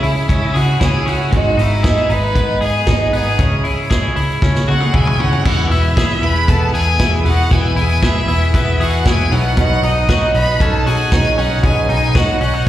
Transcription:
Already playing: C#3 C#4 E4 G#4 E5
0.03 C#2 G#3 C#4 E4, open hi-hat
0.29 C#2 C#3 G#3 C#4 E4 E5, kick, hi-hat pedal, ride
0.54 C#3 G#3 C#4 E4 F#4 G#4 F#5, open hi-hat
0.80 C#2 C#3 G#3 C#4 E4 G#4 G#5, kick, snare, hi-hat pedal, ride
1.07 C#2 G#3 C#4 E4 F#4 F#5, open hi-hat
1.32 G#1 G#2 D#3 G#3 B3 D#4 F#4 F#5, kick, hi-hat pedal, ride
1.58 G#1 G#3 B3 D#4 E4 E5, open hi-hat
1.83 G#2 D#3 G#3 B3 D#4 G#4, kick, snare, hi-hat pedal, ride
2.09 G#1 G#3 B3 D#4 B4 B5, open hi-hat
2.35 G#1 D#3 G#3 B3 D#4, kick, hi-hat pedal, ride
2.61 G#2 G#3 B3 D#4 G#4 G#5, open hi-hat
2.87 G#1 G#2 D#3 G#3 B3 D#4, kick, snare, hi-hat pedal, ride
3.13 G#1 G#3 B3 D#4 G#4 G#5, open hi-hat
3.39 C#2 C#3 G#3 C#4 E4, kick, hi-hat pedal, ride
3.65 C#2 G#3 C#4 E4, open hi-hat
3.90 C#3 G#3 C#4 E4 G#4, kick, snare, hi-hat pedal, ride
4.16 C#2 G#3 C#4 E4, open hi-hat
4.42 C#2 C#3 G#3 C#4 E4, kick, snare
4.55 snare
4.67 C#3 G#3 C#4 E4 F#4 F#5, high tom
4.81 G#4, high tom
4.93 C#2 C#3 G#3 C#4 E4 G#4 G#5, kick, mid tom
5.07 mid tom
5.19 C#2 G#3 C#4 E4 F#4 F#5, floor tom
5.33 floor tom
5.45 E1 E3 G#3 B3 E4 F#4 F#5, kick, crash
5.70 E1 G#3 B3 E4 E5, open hi-hat
5.96 E3 G#3 B3 E4 G#4 E5, kick, snare, hi-hat pedal, ride
6.22 E1 G#3 B3 E4 B4 B5, open hi-hat
6.47 E1 E3 G#3 B3 E4 A4 A5, kick, hi-hat pedal, ride
6.73 E2 G#3 B3 E4 G#4 G#5, open hi-hat
6.99 E1 E3 G#3 B3 E4, kick, snare, hi-hat pedal, ride
7.25 E1 G#3 B3 E4 F#4 F#5, open hi-hat
7.51 E1 E3 G#3 B3 E4 G#4 G#5, kick, hi-hat pedal, ride
7.76 E1 G#3 B3 E4 G#4 G#5, open hi-hat
8.03 E3 G#3 B3 E4 G#4 E5, kick, snare, hi-hat pedal, ride
8.28 E1 G#3 B3 E4, open hi-hat
8.54 E1 E3 G#3 B3 E4 E5, kick, hi-hat pedal, ride
8.79 E2 G#3 B3 E4 F#4 G#4 F#5, open hi-hat
9.04 E1 E3 G#3 B3 E4 G#4 G#5, kick, snare, hi-hat pedal, ride
9.30 B1 B2 F#3 C#4 D#4 F#4 F#5, open hi-hat
9.56 B2 D#3 F#3 C#4 D#4 F#4 F#5, kick, hi-hat pedal, ride
9.82 B1 F#3 C#4 D#4 D#5, open hi-hat
10.07 B2 D#3 F#3 C#4 D#4 F#4, kick, snare, hi-hat pedal, ride
10.34 B1 F#3 C#4 D#4 B4 B5, open hi-hat
10.59 B1 D#3 F#3 C#4 D#4 A4 A5, kick, hi-hat pedal, ride
10.84 B2 F#3 C#4 D#4 F#4 G#4 G#5, open hi-hat
11.11 B1 B2 D#3 F#3 C#4 D#4, kick, snare, hi-hat pedal, ride
11.37 B1 F#3 C#4 D#4 F#4 F#5, open hi-hat
11.63 B1 B2 D#3 F#3 C#4 D#4 G#4 G#5, kick, hi-hat pedal, ride
11.89 B1 F#3 C#4 D#4 G#4 G#5, open hi-hat
12.14 B2 D#3 F#3 C#4 D#4 F#4 F#5, kick, snare, hi-hat pedal, ride
12.40 B1 F#3 C#4 D#4 F#4 F#5, open hi-hat
12.54 D#4

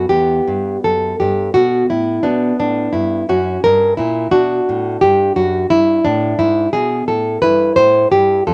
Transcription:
0.09 E2 B3 G4
0.48 G2
0.84 F#2 A4
1.20 G2 G4
1.54 B2 F#4
1.90 A2 E4
2.23 B2 B3 D4
2.59 A2 D4
2.93 G2 E4
3.29 F#2 C#4 F#4
3.64 G2 A#4
3.97 A#2 E4
4.31 B2 D4 F#4
4.69 A2
5.01 G2 G4
5.36 F#2 F#4
5.70 G2 E4
6.05 A2 D4
6.39 G#2 E4
6.73 B2 G#4
7.08 A2 A4
7.42 G2 E4 B4
7.76 A2 C5
8.12 G2 G4
8.47 F2 F4 A4

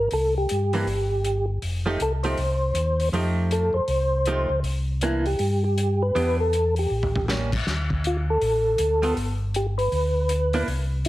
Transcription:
0.11 C2 A4, open hi-hat
0.38 G4
0.49 G2, closed hi-hat
0.73 E3 A#3 D4, open hi-hat
0.86 G1, open hi-hat
1.25 closed hi-hat
1.62 F1, open hi-hat
1.86 F3 A3 D#4 G4
2.00 C2 A4, closed hi-hat
2.23 F3 A3 D#4 G4 C5, open hi-hat
2.37 C2, open hi-hat
2.74 D#2, closed hi-hat
3.00 open hi-hat
3.12 F2 F3 A3 D#4 G4, open hi-hat
3.51 A4, closed hi-hat
3.73 F2 C5
3.88 C2, open hi-hat
4.26 F3 A3 D#4 G4, closed hi-hat
4.49 C#2
4.63 C2, open hi-hat
5.01 E3 A#3 D4 E4, closed hi-hat
5.26 G4, open hi-hat
5.39 G2, open hi-hat
5.64 G4
5.78 closed hi-hat
6.02 B4
6.15 E2 E3 B3 D4 G4, open hi-hat
6.40 A4
6.53 closed hi-hat
6.76 G4, open hi-hat
6.90 A1
7.03 floor tom
7.16 floor tom
7.28 G3 A#3 C#4, snare
7.52 kick, crash
7.66 D2, snare
7.90 kick
8.04 F4, closed hi-hat
8.30 A4
8.41 A1, open hi-hat
8.78 D2, closed hi-hat
9.02 G3 B3 F4 A4, open hi-hat
9.16 G1, open hi-hat
9.54 G4, closed hi-hat
9.78 B4, open hi-hat
9.92 D2, open hi-hat
10.29 closed hi-hat
10.53 A#3 D4 E4, open hi-hat
10.67 C2, open hi-hat
11.05 closed hi-hat

